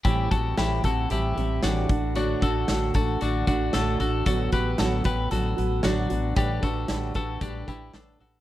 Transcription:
<<
  \new Staff \with { instrumentName = "Clean electric guitar" } { \time 4/4 \key a \dorian \tempo 4 = 114 <e' g'>8 <fis' a'>8 <e' g'>8 <fis' a'>8 <e' g'>4 <d' fis'>4 | <d' fis'>8 <fis' a'>4 <fis' a'>8 <d' fis'>8 <d' fis'>8 <fis' a'>8 <fis' a'>8 | <fis' a'>8 <g' b'>8 <fis' a'>8 <g' b'>8 <fis' a'>4 <d' fis'>4 | <d' g'>8 <fis' a'>4 <fis' a'>8 <d' g'>8 <e' g'>8 <d' a'>8 <fis' a'>8 | }
  \new Staff \with { instrumentName = "Steel-string acoustic guitar" } { \time 4/4 \key a \dorian <a, e g c' g'>8 <g c' g'>8 <a, e g c' g'>8 <g c' g'>8 <e g c' g'>8 <g c' g'>8 <a, e g c' g'>8 <a d' fis'>8 | <a, d a d' fis'>8 <a d' fis'>8 <a, d a d' fis'>8 <a d' fis'>8 <d a d' fis'>8 <a d' fis'>8 <a, d a d' fis'>8 <a d' fis'>8 | <a, d fis b fis'>8 <fis b fis'>8 <a, d fis b fis'>8 <fis b fis'>8 <d fis b fis'>8 <fis b fis'>8 <a, d fis b fis'>8 <fis b fis'>8 | <a, d g d' g' b'>8 <g d' g' b'>8 <a, d g d' g' b'>8 <g d' g' b'>8 <g d' g' b'>8 <g d' g' b'>8 <a, d g d' g' b'>8 <g d' g'>8 | }
  \new Staff \with { instrumentName = "Fretless electric bass" } { \clef bass \time 4/4 \key a \dorian a,,8 a,,8 a,,8 a,,8 a,,8 a,,8 a,,8 a,,8~ | a,,8 a,,8 a,,8 a,,8 a,,8 a,,8 a,,8 a,,8 | a,,8 a,,8 a,,8 a,,8 a,,8 a,,8 a,,8 a,,8 | a,,8 a,,8 a,,8 a,,8 a,,8 a,,8 r8 a,,8 | }
  \new DrumStaff \with { instrumentName = "Drums" } \drummode { \time 4/4 <hh bd>8 <hh bd>8 <hh sn>8 <hh bd>8 hh8 hh8 <hh sn>8 <hh bd>8 | hh8 <hh bd>8 <hh sn>8 <hh bd>8 hh8 <hh bd>8 <hh sn>8 hh8 | <hh bd>8 <hh bd>8 <hh sn>8 <hh bd>8 hh8 hh8 <hh sn>8 hh8 | <hh bd>8 <hh bd>8 <hh sn>8 <hh bd>8 <hh bd>8 <hh bd>8 <hh sn>8 hho8 | }
>>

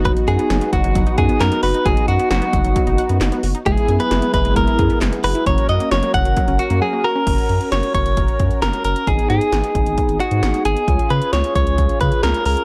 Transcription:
<<
  \new Staff \with { instrumentName = "Clean electric guitar" } { \time 4/4 \key fis \major \tempo 4 = 133 b'8 gis'4 fis'4 gis'8 ais'8 b'8 | gis'8 fis'8 fis'2 r4 | gis'8. b'8. b'8 ais'4 r8 b'8 | cis''8 dis''8 cis''8 fis''4 fis'8 gis'8 ais'8~ |
ais'4 cis''8 cis''4. ais'8 ais'8 | gis'8 gis'2 fis'4 gis'8~ | gis'8 b'8 cis''8 cis''4 b'8 ais'8 ais'8 | }
  \new Staff \with { instrumentName = "Analog polysynth" } { \time 4/4 \key fis \major <b dis' fis'>1~ | <b dis' fis'>2.~ <b dis' fis'>8 r8 | <b e' gis'>1 | <cis' fis' ais'>1 |
<cis' fis' ais'>1 | <b dis' gis'>1 | <cis' eis' gis'>1 | }
  \new Staff \with { instrumentName = "String machine" } { \time 4/4 \key fis \major <b dis' fis'>1~ | <b dis' fis'>1 | <b gis'>1 | <ais cis'>1 |
r1 | r1 | r1 | }
  \new Staff \with { instrumentName = "Synth pluck" } { \time 4/4 \key fis \major fis16 r16 fis''16 b16 fis16 b16 fis16 fis16 fis16 dis'16 fis''16 b16 fis16 b16 fis'16 dis'16 | fis16 r16 fis''16 b16 fis16 b16 fis16 fis16 fis16 dis'16 fis''16 b16 fis16 b16 fis'16 dis'16 | gis16 r16 gis'16 b16 gis16 b16 gis16 gis16 gis16 e'16 gis'16 b16 gis16 b16 fis'16 e'16 | fis16 r16 fis''16 ais16 fis16 ais16 fis16 fis16 fis16 cis'16 fis''16 ais16 fis16 ais16 fis'16 cis'16 |
r1 | r1 | r1 | }
  \new Staff \with { instrumentName = "Sub bass" } { \clef bass \time 4/4 \key fis \major fis,,16 r16 fis,16 r16 fis,,16 r16 fis,,16 fis,,16 fis,,16 r16 fis,16 r16 fis,16 r16 fis,,16 r16 | fis,,16 r16 fis,16 r16 fis,,16 r16 fis,,16 fis,,16 r16 fis,,16 r16 fis,16 fis,,16 r16 fis,,16 r16 | fis,,16 r16 fis,16 r16 fis,,16 r16 fis,,16 fis,,16 fis,,16 r16 fis,16 r16 fis,,16 r16 fis,,16 r16 | fis,,16 r16 fis,16 r16 fis,,16 r16 fis,,16 fis,,16 r16 fis,,16 r16 fis,16 r4 |
fis,,16 r16 fis,16 r16 fis,,16 r16 fis,,16 fis,,16 fis,,16 r16 fis,16 r16 fis,,16 r16 fis,,16 r16 | gis,,16 r16 gis,16 r16 gis,,16 r16 gis,,16 gis,,16 r16 gis,,16 r16 gis,16 gis,,16 r16 gis,,16 r16 | cis,16 r16 cis16 r16 cis,16 r16 cis,16 cis,16 cis,16 r16 cis16 r16 cis,16 r16 cis,16 r16 | }
  \new DrumStaff \with { instrumentName = "Drums" } \drummode { \time 4/4 <hh bd>16 hh16 hh16 hh16 <hh sn>16 hh16 <hh bd>16 hh16 <hh bd>16 hh16 <hh bd>16 hh16 <hc hh sn>16 hh16 hho16 hh16 | <hh bd>16 hh16 hh16 hh16 <hh sn>16 hh16 <hh bd>16 hh16 <hh bd>16 hh16 hh16 hh16 <hc hh sn>16 hh16 hho16 hh16 | <hh bd>16 hh16 hh16 hh16 <hh sn>16 hh16 <hh bd>16 hh16 <hh bd>16 hh16 <hh bd>16 hh16 <hc hh sn>16 hh16 hho16 hh16 | <hh bd>16 hh16 hh16 hh16 <hh sn>16 hh16 <hh bd>16 hh16 <hh bd>16 hh16 hh16 hh16 r4 |
<cymc hh bd>16 hh16 hh16 hh16 <hh sn>16 hh16 <hh bd>16 hh16 <hh bd>16 hh16 <hh bd>16 hh16 <hh sn>16 hh16 hh16 hh16 | <hh bd>16 hh16 hh16 hh16 <hh sn>16 hh16 <hh bd>16 hh16 <hh bd>16 hh16 hh16 hh16 <hh sn>16 hh16 hh16 hh16 | <hh bd>16 hh16 hh16 hh16 <hh sn>16 hh16 <hh bd>16 hh16 <hh bd>16 hh16 <hh bd>16 hh16 <hh sn>16 hh16 hho16 hh16 | }
>>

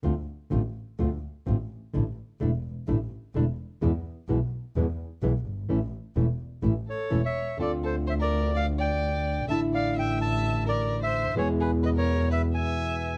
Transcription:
<<
  \new Staff \with { instrumentName = "Bandoneon" } { \time 4/4 \key d \minor \tempo 4 = 128 r1 | r1 | r1 | r2 r8 cis''8. e''8. |
d''8 c''8 e''16 d''8. f''8 g''4. | a''8 f''8 g''8 a''4 d''8. e''8. | cis''8 b'8 ees''16 cis''8. e''8 gis''4. | }
  \new Staff \with { instrumentName = "Violin" } { \time 4/4 \key d \minor r1 | r1 | r1 | r2 r8 a'8. cis''8. |
a'8 a'8 c''16 bes'8. d''8 d''4. | e''8 d''8 e''8 e''4 bes'8. c''8. | gis'8 gis'8 b'16 bes'8. b'8 e''4. | }
  \new Staff \with { instrumentName = "Nylon-string guitar" } { \time 4/4 \key d \minor <d a c' f'>8 r8 <d a c' f'>8 r8 <d a c' f'>8 r8 <d a c' f'>8 r8 | <d a d' e'>8 r8 <d a d' e'>8 r8 <d a d' e'>8 r8 <d a d' e'>8 r8 | <b, e gis b e'>8 r8 <b, e gis b e'>8 r8 <b, e gis b e'>8 r8 <b, e gis b e'>8 r8 | <e a cis' e'>8 r8 <e a cis' e'>8 r8 <e a cis' e'>8 r8 <e a cis' e'>8 r8 |
<d c' f'>1 | <d d' e'>1 | <b, e gis b e'>1 | }
  \new Staff \with { instrumentName = "Double bass" } { \clef bass \time 4/4 \key d \minor d,8 r8 a,,8 r8 d,8 r8 a,,8 r8 | a,,8 r8 e,,8 r8 a,,8 r8 e,,8 r8 | e,8 r8 b,,8 r8 e,8 r8 b,,8 g,,8 | a,,8 r8 e,,8 r8 a,,8 r8 e,,8 r8 |
d,1 | a,,1 | e,1 | }
>>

